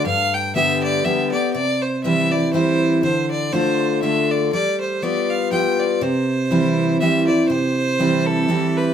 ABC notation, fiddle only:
X:1
M:3/4
L:1/8
Q:"Swing" 1/4=121
K:C
V:1 name="Fiddle"
f g e d e d | d c e d c2 | c d c2 e d | d c d f g d |
c4 e d | c3 A2 B |]